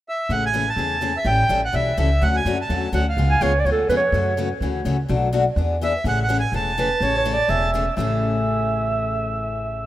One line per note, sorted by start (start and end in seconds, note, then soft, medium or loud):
0.09 0.32 E5 medium
0.29 0.68 A1 medium
0.29 0.48 C#3 medium
0.29 0.48 E3 medium
0.29 0.48 A3 medium
0.29 0.48 C#4 medium
0.29 0.48 G#4 medium
0.29 0.45 F#5 medium
0.46 0.69 G#5 medium
0.53 0.64 C#3 medium
0.53 0.64 E3 medium
0.53 0.64 A3 medium
0.53 0.64 C#4 medium
0.53 0.65 G#4 medium
0.69 1.18 A5 medium
0.76 1.15 E2 medium
0.76 0.96 C#3 medium
0.76 0.96 E3 medium
0.76 0.96 A3 medium
0.76 0.96 C#4 medium
0.76 0.96 G#4 medium
1.01 1.12 C#3 medium
1.01 1.12 E3 medium
1.01 1.12 A3 medium
1.01 1.12 C#4 medium
1.01 1.12 G#4 medium
1.17 1.27 E5 medium
1.25 1.44 A1 medium
1.25 1.43 E3 medium
1.25 1.43 G3 medium
1.25 1.44 C#4 medium
1.25 1.44 E4 medium
1.25 1.44 A4 medium
1.25 1.61 G5 medium
1.49 1.70 A1 medium
1.49 1.60 E3 medium
1.49 1.60 G3 medium
1.49 1.60 C#4 medium
1.49 1.60 E4 medium
1.49 1.60 A4 medium
1.65 1.75 F#5 medium
1.73 1.94 B1 medium
1.73 1.91 E3 medium
1.73 1.91 G3 medium
1.73 1.91 C#4 medium
1.73 1.92 E4 medium
1.73 1.92 A4 medium
1.73 1.98 E5 medium
1.97 2.18 C#2 medium
1.97 2.08 E3 medium
1.97 2.08 G3 medium
1.97 2.08 C#4 medium
1.97 2.08 E4 medium
1.97 2.08 A4 medium
1.97 2.23 E5 medium
2.22 2.41 D2 medium
2.22 2.40 D3 medium
2.22 2.40 F#3 medium
2.22 2.40 A3 medium
2.22 2.40 C#4 medium
2.22 2.40 F#4 medium
2.22 2.36 F#5 medium
2.36 2.58 G#5 medium
2.45 2.66 F#2 medium
2.45 2.56 D3 medium
2.45 2.56 F#3 medium
2.45 2.56 A3 medium
2.45 2.57 C#4 medium
2.45 2.57 F#4 medium
2.61 2.92 A5 medium
2.69 2.90 E2 medium
2.69 2.87 D3 medium
2.69 2.88 F#3 medium
2.69 2.88 A3 medium
2.69 2.88 C#4 medium
2.69 2.88 F#4 medium
2.93 3.13 D2 medium
2.93 3.03 D3 medium
2.93 3.03 F#3 medium
2.93 3.04 A3 medium
2.93 3.04 C#4 medium
2.93 3.04 F#4 medium
2.93 3.07 F#5 medium
3.09 3.53 F5 medium
3.17 3.36 C#2 medium
3.17 3.36 C#3 medium
3.17 3.36 G#3 medium
3.17 3.36 B3 medium
3.17 3.36 F4 medium
3.17 3.36 G#4 medium
3.31 3.44 G#5 medium
3.41 3.61 C#2 medium
3.41 3.51 C#3 medium
3.41 3.52 G#3 medium
3.41 3.52 B3 medium
3.41 3.52 F4 medium
3.41 3.52 G#4 medium
3.41 3.62 C#5 medium
3.60 3.67 D5 medium
3.65 3.85 D2 medium
3.65 3.83 C#3 medium
3.65 3.84 G#3 medium
3.65 3.84 B3 medium
3.65 3.84 F4 medium
3.65 3.84 G#4 medium
3.65 3.71 C#5 medium
3.72 3.88 A4 medium
3.89 4.09 F2 medium
3.89 4.00 C#3 medium
3.89 4.00 G#3 medium
3.89 4.00 B3 medium
3.89 4.00 F4 medium
3.89 4.00 G#4 medium
3.89 3.92 B4 medium
3.97 4.41 C#5 medium
4.12 4.51 F#2 medium
4.12 4.31 C#3 medium
4.12 4.32 E3 medium
4.12 4.32 A3 medium
4.12 4.32 C#4 medium
4.12 4.32 F#4 medium
4.37 4.47 C#3 medium
4.37 4.48 E3 medium
4.37 4.48 A3 medium
4.37 4.48 C#4 medium
4.37 4.48 F#4 medium
4.61 4.81 D2 medium
4.61 4.80 C#3 medium
4.61 4.80 E3 medium
4.61 4.80 A3 medium
4.61 4.80 C#4 medium
4.61 4.80 F#4 medium
4.85 5.05 C#2 medium
4.85 4.95 C#3 medium
4.85 4.95 E3 medium
4.85 4.96 A3 medium
4.85 4.96 C#4 medium
4.85 4.96 F#4 medium
5.09 5.48 B1 medium
5.09 5.27 B2 medium
5.09 5.27 F#3 medium
5.09 5.27 A3 medium
5.09 5.27 D4 medium
5.09 5.28 F#4 medium
5.33 5.43 B2 medium
5.33 5.43 F#3 medium
5.33 5.43 A3 medium
5.33 5.43 D4 medium
5.33 5.44 F#4 medium
5.56 5.95 E2 medium
5.56 5.75 E3 medium
5.56 5.75 B3 medium
5.56 5.76 D4 medium
5.56 5.76 G#4 medium
5.82 5.92 E3 medium
5.82 5.92 B3 medium
5.82 5.92 D4 medium
5.82 5.92 G#4 medium
5.82 6.05 E5 medium
6.04 6.43 A1 medium
6.04 6.23 C#3 medium
6.04 6.23 E3 medium
6.04 6.23 A3 medium
6.04 6.24 C#4 medium
6.04 6.24 G#4 medium
6.04 6.19 F#5 medium
6.23 6.37 F#5 medium
6.29 6.39 C#3 medium
6.29 6.39 E3 medium
6.29 6.39 A3 medium
6.29 6.40 C#4 medium
6.29 6.40 G#4 medium
6.40 6.53 G#5 medium
6.52 6.91 E1 medium
6.52 6.71 C#3 medium
6.52 6.71 E3 medium
6.52 6.72 A3 medium
6.52 6.72 C#4 medium
6.52 6.72 G#4 medium
6.52 7.71 A5 loud
6.78 6.88 C#3 medium
6.78 6.88 E3 medium
6.78 6.88 A3 medium
6.78 6.88 C#4 medium
6.78 6.88 G#4 medium
6.78 7.04 B4 medium
7.01 7.39 A1 medium
7.01 7.20 C#3 medium
7.01 7.20 E3 medium
7.01 7.20 A3 medium
7.01 7.20 C#4 medium
7.01 7.20 G#4 medium
7.01 7.17 C#5 medium
7.18 7.35 C#5 medium
7.25 7.35 C#3 medium
7.25 7.36 E3 medium
7.25 7.36 A3 medium
7.25 7.36 C#4 medium
7.25 7.36 G#4 medium
7.34 7.52 D5 medium
7.48 7.88 E1 medium
7.48 7.67 C#3 medium
7.48 7.67 E3 medium
7.48 7.68 A3 medium
7.48 7.68 C#4 medium
7.48 7.68 G#4 medium
7.48 7.96 E5 medium
7.74 7.84 C#3 medium
7.74 7.84 E3 medium
7.74 7.84 A3 medium
7.74 7.85 C#4 medium
7.74 7.85 G#4 medium
7.97 9.86 A1 medium
7.97 9.86 A2 medium
7.97 9.86 C#3 medium
7.97 9.86 E3 medium
7.97 9.86 A3 medium
7.97 9.86 C#4 medium
7.97 9.86 G#4 medium
7.97 9.86 E5 medium